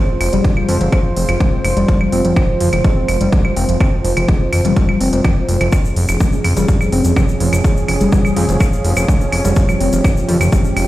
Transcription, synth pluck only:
0.09 C4
0.33 G3
0.57 F3
0.68 C4
0.81 F3
0.92 F3
1.16 F3
1.29 F3
1.40 G#3
1.53 C4
1.77 G3
2.01 F3
2.12 C4
2.25 F3
2.36 F3
2.60 F3
2.73 F3
2.84 G#3
2.97 C4
3.21 G3
3.45 F3
3.57 C4
3.69 F3
3.80 F3
4.05 F3
4.17 F3
4.29 G#3
4.41 C4
4.65 G3
4.89 F3
5.01 C4
5.13 F3
5.25 F3
5.49 F3
5.61 F3
5.73 F3
5.97 F3
6.09 F3
6.20 G#3
6.33 C#4
6.57 G3
6.81 F3
6.93 C4
7.05 F3
7.17 F3
7.41 F3
7.53 F3
7.64 G#3
7.77 C#4
8.01 G3
8.25 F3
8.37 C4
8.49 F3
8.61 F3
8.84 F3
8.97 F3
9.08 G#3
9.21 C#4
9.45 G3
9.69 F3
9.80 C4
9.93 F3
10.04 F3
10.28 F3
10.41 F3
10.52 G#3
10.65 C#4

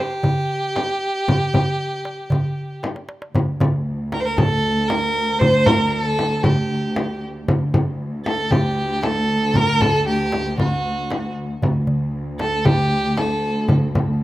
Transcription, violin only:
0.00 G4
4.13 A#4
4.20 C5
4.25 A#4
4.30 A#4
4.37 A4
4.88 A#4
5.39 C5
5.66 A#4
5.91 A#4
6.02 A4
6.43 G4
8.26 A4
8.52 G4
9.04 A4
9.56 A#4
9.81 A4
10.08 G4
10.59 F#4
12.40 A4
12.65 G4
13.18 A4

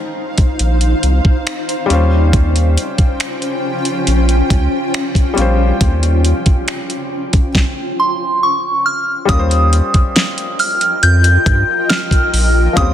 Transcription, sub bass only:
0.60 A#1
1.03 C2
1.90 D#2
2.99 A#1
4.07 A#1
4.50 C#2
5.38 A#1
5.81 D#2
6.46 F2
9.29 D#2
9.94 F2
11.03 F2
11.46 G2
12.33 A#1
12.77 D#2

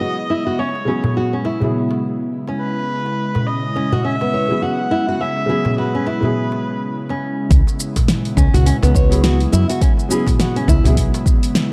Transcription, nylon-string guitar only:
0.01 F#4
0.30 E4
0.47 F#4
0.59 C#4
0.88 C#4
1.17 F#4
1.33 C#4
1.45 E4
2.48 C#4
3.76 C#4
3.93 F#4
4.04 C#4
4.22 B3
4.34 C#5
4.62 F#4
4.91 E4
5.08 F#4
5.20 C#4
5.49 C#4
5.78 F#4
5.95 C#4
6.07 E4
7.10 C#4
8.37 C#4
8.54 F#4
8.66 C#4
8.83 B3
8.95 C#5
9.24 F#4
9.52 E4
9.70 F#4
9.82 C#4
10.10 C#4
10.40 F#4
10.56 C#4
10.68 E4

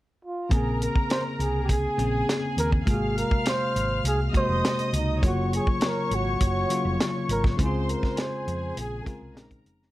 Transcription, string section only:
0.50 A#4 A#5
1.68 G#4 G#5
2.87 F5 F6
4.33 D#5 D#6
5.23 C#5 C#6
7.59 C5 C6
8.17 G#4 G#5
9.36 A#4 A#5

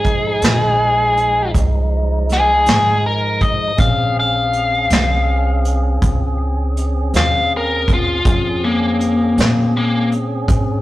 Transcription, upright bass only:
Already playing: G#1
0.42 A#1
1.55 C2
2.67 G#1
3.78 A#1
4.90 C2
6.02 C#2
7.14 D#2
8.26 F2
9.37 A#2
10.49 G#2

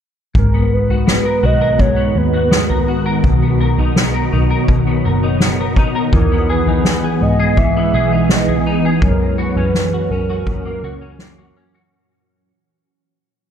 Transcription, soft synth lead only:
0.38 A#4
0.73 B4
1.45 D#5
1.80 C#5
2.17 B4
6.14 A#4
6.51 B4
7.22 D#5
7.58 E5
8.29 D#5
9.02 A#4
9.38 B4
10.10 A#4

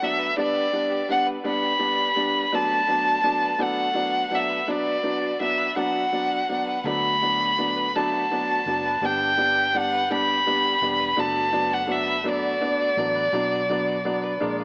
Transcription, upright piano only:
0.02 F#3 B3 D4
0.37 G3 B3 D4
0.73 G3 B3 D4
1.09 G3 B3 D4
1.44 G3 B3 D4
1.79 G3 B3 D4
2.16 G3 B3 D4
2.52 F#3 B3 D4
2.88 F#3 B3 D4
3.23 F#3 B3 D4
3.58 F#3 B3 D4
3.94 F#3 B3 D4
4.30 F#3 B3 D4
4.67 F#3 B3 D4
5.03 F#3 B3 D4
5.40 F#3 B3 D4
5.76 F#3 B3 D4
6.12 F#3 B3 D4
6.49 F#3 B3 D4
6.86 F#3 B3 D4
7.22 F#3 B3 D4
7.58 F#3 B3 D4
7.95 F#3 B3 D4
8.31 F#3 B3 D4
8.67 F#3 B3 D4
9.02 G3 B3 D4
9.37 G3 B3 D4
9.74 G3 B3 D4
10.10 G3 B3 D4
10.46 G3 B3 D4
10.82 G3 B3 D4
11.17 F#3 B3 D4
11.53 F#3 B3 D4
11.87 F#3 B3 D4
12.24 F#3 B3 D4
12.61 B3 D4
12.97 F#3 B3 D4
13.33 F#3 B3 D4
13.69 F#3 B3 D4
14.05 F#3 B3 D4
14.40 G#3 A#3 D4

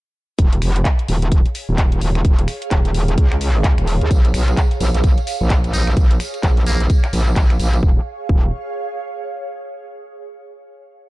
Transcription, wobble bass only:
0.39 D#1
0.62 F1
1.08 D#1
1.69 D#1
2.01 D#1
2.25 D#1
2.71 D#1
3.18 C#2
3.78 D#1
4.01 D#2
4.11 A#1
4.34 B1
4.80 A#1
5.41 A#1
5.73 A#1
5.97 A#1
6.43 A#1
7.13 A#1
7.36 A#1
7.60 A#1
8.29 D#1

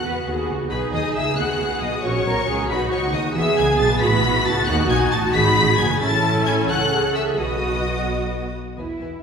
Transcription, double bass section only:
0.03 E2
0.26 D#2
0.48 C#2
0.70 B1
0.93 D#2
1.15 C#2
1.38 D#2
1.60 C#2
1.82 B1
2.04 A#1
2.25 B1
2.47 C#2
2.69 B1
2.91 C#2
3.13 D#2
3.35 E2
3.57 C#2
3.79 B1
4.00 A1
4.22 B1
4.45 C#2
4.66 D#2
4.88 B1
5.11 A1
5.33 G#1
5.55 A1
5.78 F#1
6.00 A1
6.68 C#2
7.38 B1
8.77 E2
9.00 E2

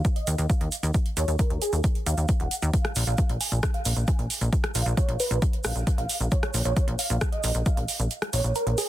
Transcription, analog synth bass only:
0.27 D#2
0.38 D#2
0.61 D#2
0.83 D#2
1.17 D#2
1.28 D#2
1.50 D#2
1.73 D#2
2.06 D#2
2.18 D#2
2.40 D#1
2.62 D#2
2.96 A#1
3.07 A#1
3.30 A#1
3.52 A#1
3.85 A#1
3.97 A#1
4.19 A#1
4.41 A#1
4.75 A#1
4.86 A#1
5.08 A#1
5.31 A#1
5.65 A#1
5.76 A#1
5.98 A#1
6.21 A#1
6.54 A#1
6.65 A#1
6.88 A#1
7.10 A#1
7.44 A#1
7.55 A#1
7.77 A#1
8.00 A#1
8.33 A#1
8.44 A#1
8.67 A#1

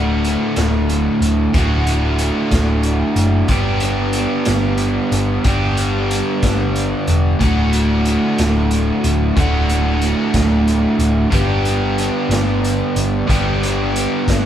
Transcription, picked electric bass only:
Already playing: D1
0.57 D1
1.21 D1
1.55 D1
2.51 D1
3.16 F#1
3.49 G1
4.47 G1
5.12 G1
5.45 G1
6.43 G1
7.08 E1
7.41 D1
8.39 D1
9.04 D1
9.37 D1
10.34 D1
10.99 D1
11.33 G1
12.29 G1
12.96 G1
13.29 G1
14.27 G1

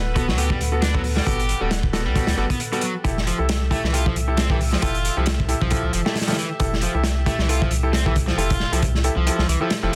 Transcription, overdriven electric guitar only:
0.16 B3
0.28 F#3
0.38 G4
0.50 G3
0.82 D4
0.94 F#3
1.16 G3
1.26 G4
1.61 G3
2.06 G3
2.38 G3
2.50 B3
2.73 G3
2.83 F#3
3.27 F3
3.72 A3
3.84 E3
3.94 F4
4.07 F3
4.38 C4
4.50 E3
4.73 F3
4.82 F4
5.18 F3
5.62 F3
5.94 F3
6.06 A3
6.29 F3
6.38 E3
6.83 F3
7.27 A3
7.39 E3
7.49 F4
7.61 F3
7.93 C4
8.06 E3
8.28 F3
8.37 F4
8.73 F3
9.17 F3
9.49 E3
9.62 F3
9.84 F3

